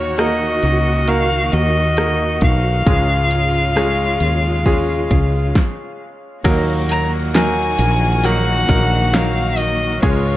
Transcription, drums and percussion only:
0.18 cross-stick, closed hi-hat
0.63 closed hi-hat
1.08 closed hi-hat
1.52 closed hi-hat
1.97 cross-stick, closed hi-hat
2.41 kick, closed hi-hat
2.87 kick, closed hi-hat
3.31 closed hi-hat
3.76 cross-stick, closed hi-hat
4.20 closed hi-hat
4.66 kick, closed hi-hat
5.11 kick, closed hi-hat
5.55 kick, snare
6.45 kick, open hi-hat, crash
6.89 open hi-hat
7.34 snare, open hi-hat
7.79 open hi-hat
8.24 open hi-hat
8.69 kick, open hi-hat
9.13 snare, open hi-hat
9.57 open hi-hat
10.03 kick, open hi-hat

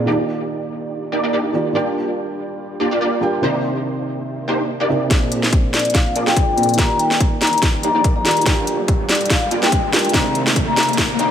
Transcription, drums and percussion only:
5.11 kick, snare, closed hi-hat
5.32 closed hi-hat
5.43 snare
5.53 kick, closed hi-hat
5.74 snare, closed hi-hat
5.79 closed hi-hat
5.85 closed hi-hat
5.90 closed hi-hat
5.95 kick, snare, closed hi-hat
6.16 closed hi-hat
6.27 snare
6.37 kick, closed hi-hat
6.58 closed hi-hat
6.63 closed hi-hat
6.69 closed hi-hat
6.74 closed hi-hat
6.78 kick, snare, closed hi-hat
6.99 closed hi-hat
7.11 snare
7.20 kick, closed hi-hat
7.41 snare, closed hi-hat
7.47 closed hi-hat
7.53 closed hi-hat
7.58 closed hi-hat
7.62 kick, snare, closed hi-hat
7.83 closed hi-hat
8.04 kick, closed hi-hat
8.25 snare, closed hi-hat
8.31 closed hi-hat
8.37 closed hi-hat
8.41 closed hi-hat
8.46 kick, snare, closed hi-hat
8.67 closed hi-hat
8.88 kick, closed hi-hat
9.09 snare, closed hi-hat
9.15 closed hi-hat
9.21 closed hi-hat
9.26 closed hi-hat
9.30 kick, snare, closed hi-hat
9.51 closed hi-hat
9.63 snare
9.72 kick, closed hi-hat
9.93 snare, closed hi-hat
9.99 closed hi-hat
10.05 closed hi-hat
10.09 closed hi-hat
10.14 kick, snare, closed hi-hat
10.35 closed hi-hat
10.47 snare
10.56 kick, closed hi-hat
10.77 snare, closed hi-hat
10.83 closed hi-hat
10.89 closed hi-hat
10.93 closed hi-hat
10.98 kick, snare, closed hi-hat
11.19 closed hi-hat

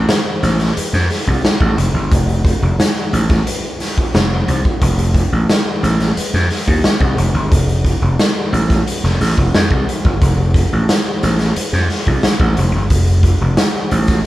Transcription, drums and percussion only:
0.09 snare, closed hi-hat
0.43 snare, closed hi-hat
0.60 snare, closed hi-hat
0.77 closed hi-hat
0.94 snare
1.10 snare, open hi-hat
1.28 kick
1.45 snare, closed hi-hat
1.61 kick
1.78 closed hi-hat
2.12 kick, closed hi-hat
2.29 closed hi-hat
2.45 kick, closed hi-hat
2.80 snare, closed hi-hat
3.13 closed hi-hat
3.29 kick, snare, closed hi-hat
3.47 closed hi-hat
3.80 snare, open hi-hat
3.98 kick
4.15 snare, closed hi-hat
4.48 closed hi-hat
4.65 kick
4.82 kick, closed hi-hat
4.99 closed hi-hat
5.14 kick, closed hi-hat
5.50 snare, closed hi-hat
5.84 snare, closed hi-hat
6.00 snare, closed hi-hat
6.17 closed hi-hat
6.34 snare
6.50 snare, open hi-hat
6.68 kick
6.84 snare, closed hi-hat
7.01 kick
7.18 closed hi-hat
7.52 kick, closed hi-hat
7.69 closed hi-hat
7.85 kick, closed hi-hat
8.19 snare, closed hi-hat
8.54 closed hi-hat
8.70 kick, snare, closed hi-hat
8.87 closed hi-hat
9.04 snare
9.21 snare, open hi-hat
9.38 kick
9.55 snare, closed hi-hat
9.71 kick
9.89 closed hi-hat
10.05 kick
10.22 kick, closed hi-hat
10.54 kick, closed hi-hat
10.89 snare, closed hi-hat
11.23 snare, closed hi-hat
11.39 snare, closed hi-hat
11.56 closed hi-hat
11.73 snare
11.90 snare, open hi-hat
12.07 kick
12.23 snare, closed hi-hat
12.40 kick
12.57 closed hi-hat
12.90 kick, closed hi-hat
13.07 closed hi-hat
13.23 kick, closed hi-hat
13.57 snare, closed hi-hat
13.91 closed hi-hat
14.07 kick, snare, closed hi-hat

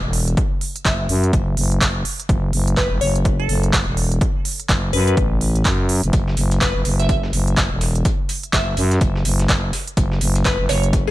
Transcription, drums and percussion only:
0.13 open hi-hat
0.28 closed hi-hat
0.37 kick, closed hi-hat
0.61 open hi-hat
0.76 closed hi-hat
0.85 kick, clap, closed hi-hat
1.09 open hi-hat
1.24 closed hi-hat
1.33 kick, closed hi-hat
1.57 open hi-hat
1.72 closed hi-hat
1.81 kick, clap, closed hi-hat
2.05 open hi-hat
2.20 closed hi-hat
2.29 kick, closed hi-hat
2.53 open hi-hat
2.68 closed hi-hat
2.77 kick, clap, closed hi-hat
3.01 open hi-hat
3.16 closed hi-hat
3.25 kick, closed hi-hat
3.49 open hi-hat
3.63 closed hi-hat
3.73 kick, clap, closed hi-hat
3.97 open hi-hat
4.12 closed hi-hat
4.21 kick, closed hi-hat
4.45 open hi-hat
4.60 closed hi-hat
4.69 kick, clap, closed hi-hat
4.93 open hi-hat
5.08 closed hi-hat
5.17 kick, closed hi-hat
5.41 open hi-hat
5.55 closed hi-hat
5.65 kick, clap, closed hi-hat
5.89 open hi-hat
6.03 closed hi-hat
6.13 kick, closed hi-hat
6.28 snare
6.37 closed hi-hat, open hi-hat
6.51 closed hi-hat
6.61 kick, snare, clap, closed hi-hat
6.85 closed hi-hat, open hi-hat
6.99 snare, closed hi-hat
7.09 kick, closed hi-hat
7.23 snare
7.33 closed hi-hat, open hi-hat
7.47 closed hi-hat
7.57 kick, snare, clap, closed hi-hat
7.81 snare, closed hi-hat, open hi-hat
7.95 closed hi-hat
8.05 kick, closed hi-hat
8.29 closed hi-hat, open hi-hat
8.43 closed hi-hat
8.53 kick, snare, clap, closed hi-hat
8.77 closed hi-hat, open hi-hat
8.91 snare, closed hi-hat
9.01 kick, closed hi-hat
9.16 snare
9.25 closed hi-hat, open hi-hat
9.39 snare, closed hi-hat
9.49 kick, snare, clap, closed hi-hat
9.73 snare, closed hi-hat, open hi-hat
9.87 closed hi-hat
9.97 kick, closed hi-hat
10.12 snare
10.21 closed hi-hat, open hi-hat
10.35 closed hi-hat
10.45 kick, snare, clap, closed hi-hat
10.69 snare, closed hi-hat, open hi-hat
10.84 closed hi-hat
10.93 kick, closed hi-hat
11.07 snare

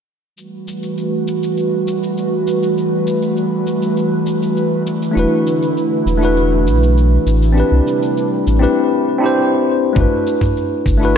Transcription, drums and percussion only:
0.38 shaker
0.68 shaker
0.83 shaker
0.98 shaker
1.28 shaker
1.43 shaker
1.57 shaker
1.88 shaker
2.03 shaker
2.18 shaker
2.47 shaker
2.63 shaker
2.78 shaker
3.07 shaker
3.23 shaker
3.37 shaker
3.67 shaker
3.82 shaker
3.97 shaker
4.27 shaker
4.42 shaker
4.57 shaker
4.87 shaker
5.02 shaker
5.17 shaker
5.47 shaker
5.63 shaker
5.77 shaker
6.07 shaker
6.22 shaker
6.37 shaker
6.67 shaker
6.83 shaker
6.98 shaker
7.27 shaker
7.42 shaker
7.58 shaker
7.87 shaker
8.03 shaker
8.17 shaker
8.47 shaker
8.63 shaker
9.96 kick, mid tom, shaker
10.27 shaker
10.41 kick, mid tom, shaker
10.57 shaker
10.86 kick, shaker
11.02 shaker

